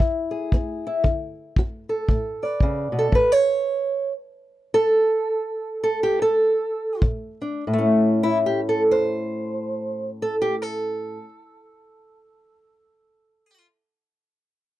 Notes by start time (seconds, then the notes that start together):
Already playing: E4
0.00 E2, kick
0.31 G#4
0.52 B3, kick
0.87 E4
1.04 D3, kick
1.56 F#4, kick
1.89 A4
2.08 A2, kick
2.43 B4 D5
2.60 C#3, kick
2.92 B2
2.99 A4
3.12 A2 B4, kick
3.32 C#5
4.74 A4
5.84 A4
6.03 G4
6.22 A4
7.02 A#2, kick
7.42 D4
7.67 A2
7.73 A3
7.78 C#4
8.23 E4
8.46 G4
8.69 A4
8.91 C5
10.22 A4
10.42 G4
10.62 A4